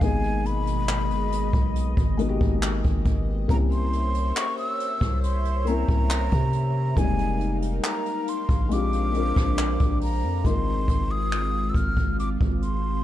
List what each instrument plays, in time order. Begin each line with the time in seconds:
0.00 808-style bass G#1, analog synth pad B2 G#3 D#5, felt piano G#3 A#3 B3 D#4, flute G#5, kick, closed hi-hat
0.05 felt piano G#4
0.24 closed hi-hat
0.45 flute B5, closed hi-hat
0.67 closed hi-hat
0.89 clap, closed hi-hat
1.11 808-style bass G1, closed hi-hat
1.32 808-style bass G#1, closed hi-hat
1.53 808-style bass B1, kick, closed hi-hat
1.76 closed hi-hat
1.97 808-style bass G#1, kick, closed hi-hat
2.17 felt piano G#3 A#3 B3 D#4, closed hi-hat
2.22 felt piano F#4
2.29 felt piano G4
2.41 808-style bass G#1, kick
2.62 clap, closed hi-hat
2.84 808-style bass G#1, kick, closed hi-hat
3.05 kick, closed hi-hat
3.48 808-style bass C2, felt piano A#3 C4 C#4 E4, analog synth pad C5 C#5 E5, flute A#5, kick, closed hi-hat
3.53 felt piano G4
3.71 flute C6, closed hi-hat
3.93 closed hi-hat
4.15 closed hi-hat
4.37 flute C#6, clap, closed hi-hat
4.58 flute E6, closed hi-hat
4.80 closed hi-hat
5.01 808-style bass C2, kick, cross-stick, closed hi-hat
5.23 flute C6, closed hi-hat
5.45 closed hi-hat
5.65 felt piano A#3 C4 C#4 E4, flute A#5, closed hi-hat
5.70 felt piano A#4
5.89 808-style bass C2, kick
6.10 clap
6.31 808-style bass C3, kick, closed hi-hat
6.53 closed hi-hat
6.95 808-style bass F1, felt piano G3 A#3 C4 D#4, analog synth pad D#4 A#4 F5, flute G#5, kick, closed hi-hat
7.00 felt piano G3 G#3
7.19 closed hi-hat
7.40 closed hi-hat
7.62 closed hi-hat
7.84 flute A#5, clap, closed hi-hat
8.06 closed hi-hat
8.28 flute C6, closed hi-hat
8.49 808-style bass A#1, kick, closed hi-hat
8.69 felt piano G#3 C4 D4 F4, analog synth pad D4 C5, flute D6, closed hi-hat
8.74 felt piano G4
8.93 closed hi-hat
9.13 felt piano G#3 C4 D4 F4, closed hi-hat
9.17 felt piano A#4
9.36 808-style bass A#1, kick, cross-stick
9.58 clap, closed hi-hat
9.79 808-style bass A#1, kick, closed hi-hat
10.01 flute A#5, open hi-hat
10.23 808-style bass F2
10.43 808-style bass G#1, felt piano G#3 A#3 D#4 F4, analog synth pad G#3 C4 F4, flute C6, kick, closed hi-hat
10.48 felt piano C4 A#4
10.88 808-style bass G#1, kick, closed hi-hat
11.11 flute D#6
11.32 finger snap, closed hi-hat
11.69 flute E6
11.74 808-style bass G#1, flute F6, kick, closed hi-hat
11.97 kick, closed hi-hat
12.19 flute D6, closed hi-hat
12.41 808-style bass G#1, kick
12.62 flute C6, closed hi-hat